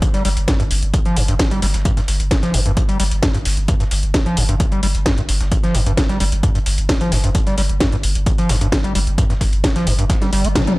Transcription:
0.02 acid bass G1, kick, closed hi-hat, tambourine
0.14 acid bass G3, snare, closed hi-hat
0.25 sub bass G1, acid bass G3, snare, open hi-hat, tambourine
0.37 sub bass G1, closed hi-hat
0.48 acid bass G2, kick, snare, closed hi-hat, tambourine
0.60 sub bass G1, acid bass G2, closed hi-hat
0.71 sub bass G1, open hi-hat, tambourine
0.83 sub bass G1, closed hi-hat
0.94 acid bass G1, kick, closed hi-hat, tambourine
1.05 acid bass F3, closed hi-hat
1.17 sub bass G1, acid bass G2, open hi-hat, tambourine
1.28 sub bass G1, acid bass G2, closed hi-hat
1.39 acid bass G1, kick, snare, closed hi-hat, tambourine
1.51 sub bass G1, acid bass G3, closed hi-hat
1.62 sub bass G1, acid bass G3, snare, open hi-hat, tambourine
1.74 sub bass G1, snare, closed hi-hat
1.85 acid bass G2, kick, closed hi-hat, tambourine
1.97 acid bass G2, snare, closed hi-hat
2.08 sub bass G1, snare, open hi-hat, tambourine
2.20 sub bass G1, closed hi-hat
2.31 acid bass G1, kick, snare, closed hi-hat, tambourine
2.43 sub bass G1, acid bass F3, snare, closed hi-hat
2.54 sub bass G1, acid bass G2, open hi-hat, tambourine
2.66 sub bass G1, acid bass G2, closed hi-hat
2.77 acid bass G1, kick, closed hi-hat, tambourine
2.89 acid bass G3, closed hi-hat
3.00 sub bass G1, acid bass G3, snare, open hi-hat, tambourine
3.11 sub bass G1, closed hi-hat
3.22 acid bass G2, kick, snare, closed hi-hat, tambourine
3.34 sub bass G1, acid bass G2, closed hi-hat
3.45 sub bass G1, snare, open hi-hat
3.57 sub bass G1, closed hi-hat
3.68 acid bass G2, kick, closed hi-hat, tambourine
3.80 acid bass G2, snare, closed hi-hat
3.91 sub bass G1, snare, open hi-hat, tambourine
4.03 sub bass G1, closed hi-hat
4.14 acid bass G1, kick, snare, closed hi-hat, tambourine
4.26 sub bass G1, acid bass F3, closed hi-hat
4.37 sub bass G1, acid bass G2, open hi-hat, tambourine
4.49 sub bass G1, acid bass G2, closed hi-hat
4.60 acid bass G1, kick, closed hi-hat, tambourine
4.72 acid bass G3, closed hi-hat
4.83 sub bass G1, acid bass G3, open hi-hat, tambourine
4.95 sub bass G1, closed hi-hat
5.06 acid bass G2, kick, snare, closed hi-hat, tambourine
5.18 sub bass G1, acid bass G2, closed hi-hat
5.29 sub bass G1, snare, open hi-hat, tambourine
5.41 sub bass G1, snare, closed hi-hat
5.52 acid bass G1, kick, closed hi-hat, tambourine
5.63 acid bass F3, snare, closed hi-hat
5.75 sub bass G1, acid bass G2, snare, open hi-hat, tambourine
5.86 sub bass G1, acid bass G2, closed hi-hat
5.97 acid bass G1, kick, snare, closed hi-hat, tambourine
6.09 sub bass G1, acid bass G3, snare, closed hi-hat
6.20 sub bass G1, acid bass G3, open hi-hat, tambourine
6.32 sub bass G1, closed hi-hat
6.43 acid bass G2, kick, closed hi-hat, tambourine
6.55 acid bass G2, closed hi-hat
6.66 sub bass G1, snare, open hi-hat, tambourine
6.78 sub bass G1, closed hi-hat
6.89 acid bass G1, kick, snare, closed hi-hat, tambourine
7.01 sub bass G1, acid bass F3, closed hi-hat
7.12 sub bass G1, acid bass G2, snare, open hi-hat
7.24 sub bass G1, acid bass G2, closed hi-hat
7.35 acid bass G1, kick, closed hi-hat, tambourine
7.47 acid bass G3, snare, closed hi-hat
7.58 sub bass G1, acid bass G3, snare, open hi-hat, tambourine
7.70 sub bass G1, closed hi-hat
7.80 acid bass G2, kick, snare, closed hi-hat, tambourine
7.92 sub bass G1, acid bass G2, closed hi-hat
8.03 sub bass G1, open hi-hat, tambourine
8.15 sub bass G1, closed hi-hat
8.26 acid bass G1, kick, closed hi-hat, tambourine
8.38 acid bass F3, closed hi-hat
8.49 sub bass G1, acid bass G2, snare, open hi-hat, tambourine
8.61 sub bass G1, acid bass G2, closed hi-hat
8.72 acid bass G1, kick, snare, closed hi-hat, tambourine
8.84 sub bass G1, acid bass G3, closed hi-hat
8.95 sub bass G1, acid bass G3, open hi-hat, tambourine
9.07 sub bass G1, closed hi-hat
9.18 acid bass G2, kick, closed hi-hat, tambourine
9.30 acid bass G2, snare, closed hi-hat
9.41 sub bass G1, kick, snare, open hi-hat, tambourine
9.53 sub bass G1, closed hi-hat
9.64 acid bass G1, kick, snare, closed hi-hat, tambourine
9.76 sub bass G1, acid bass F3, snare, closed hi-hat
9.87 sub bass G1, acid bass G2, open hi-hat, tambourine
9.99 sub bass G1, acid bass G2, closed hi-hat
10.10 acid bass G1, kick, snare, closed hi-hat, tambourine
10.22 acid bass G3, snare, closed hi-hat
10.33 sub bass G1, acid bass G3, snare, open hi-hat, tambourine
10.44 sub bass G1, acid bass A#3, closed hi-hat
10.55 acid bass C3, kick, snare, closed hi-hat, high tom, tambourine
10.67 sub bass G1, acid bass G3, closed hi-hat, high tom

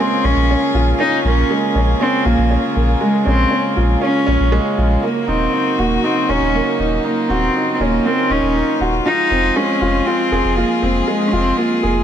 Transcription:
Already playing: string quartet C#3 G#3 A#3 F4 G#4, upright piano A#3 C#4 F4
0.00 upright piano G#3, cello C4
0.24 sub bass A#1, upright piano C#4, cello C#4
0.36 sub bass A#1
0.50 upright piano C#4
0.74 sub bass A#1, upright piano F4
0.99 upright piano C#4, cello D#4
1.24 sub bass A#1, upright piano A#3, cello C#4
1.51 upright piano G#3
1.75 sub bass A#1, upright piano C#4
2.01 cello C4, upright piano C#4
2.25 sub bass A#1, cello A#3, upright piano F4
2.38 sub bass A#1
2.51 upright piano C#4
2.76 sub bass A#1, upright piano A#3
3.01 upright piano G#3, cello G#3
3.26 sub bass A#1, cello C4, upright piano C#4
3.51 upright piano C#4
3.77 sub bass A#1, upright piano F4
4.01 upright piano C#4, cello C#4
4.27 sub bass A#1, upright piano C#4
4.40 sub bass A#1
4.52 upright piano G#3
4.78 sub bass A#1, upright piano F4
5.03 string quartet F#3 D#4 F#4, upright piano A#3, cello A#3
5.28 sub bass D#1, cello C4, upright piano D#4
5.53 upright piano D#4
5.79 sub bass D#1, cello A#3, upright piano F#4
6.04 cello C4, upright piano D#4
6.29 sub bass D#1, upright piano C#4, cello C#4
6.41 sub bass D#1
6.55 upright piano A#3
6.79 sub bass D#1, upright piano D#4
7.05 cello A#3, upright piano D#4, string quartet F4
7.29 sub bass D#1, cello C4, upright piano F#4
7.56 upright piano D#4
7.73 cello C4
7.80 sub bass D#1, cello A#3, upright piano C#4
8.06 upright piano A#3, cello C4
8.30 sub bass D#1, cello C#4, upright piano D#4
8.42 sub bass D#1
8.56 upright piano D#4
8.80 sub bass D#1, upright piano F#4
9.06 string quartet F3 G#3 G#4, cello D#4, upright piano F4
9.31 sub bass F1, upright piano C4
9.56 upright piano G#3, cello C#4
9.81 sub bass F1, upright piano F4
10.06 cello C4, upright piano F4
10.31 sub bass F1, upright piano G#4
10.44 sub bass F1
10.57 cello A#3, upright piano F4
10.82 sub bass F1, upright piano C4
11.07 cello G#3, upright piano G#3
11.28 cello C#4
11.32 sub bass F1, cello C4, upright piano F4
11.57 cello A#3, upright piano F4
11.83 sub bass F1, upright piano G#4

